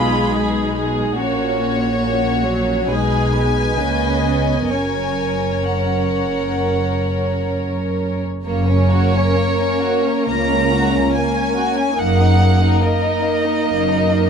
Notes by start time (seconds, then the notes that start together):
Already playing: B1 B2 G#3 D#4 F4 G#4 B5
0.35 G#4
0.76 G#4
1.17 A#1 A#2 A#3 C#4 F#4 C#5
1.59 C#5
2.00 A#3 C#4 F#4
2.45 F#3
2.89 B1 B2 G#3 D#4 G#4 B4 G#5
3.34 B4
3.76 C#2 C#3 A#3 C#4 D#5
4.24 B3
4.69 F#1 F#2 C#4 A#4 C#5 G#5
5.66 F#5
8.46 F#1 F#2 A#3 C#4 A#4 C#5
8.69 C#4
8.91 F#4
9.14 C#4
9.35 A#3
9.58 C#4
9.81 F#4
10.04 C#4
10.26 C#2 A#3 A#5
10.50 C#4
10.72 F#4
10.94 C#4
11.14 A#3 G#5
11.35 C#4
11.55 F#4
11.76 C#4
11.98 F#1 F#2 A#3 D#4 A#4 F#5
12.19 D#4
12.39 A#3
12.61 D#4
12.81 A#3 D#5
13.02 D#4
13.22 A#3
13.44 D#4
13.66 F#1 F#2 A#3
13.88 D#4
14.08 A#3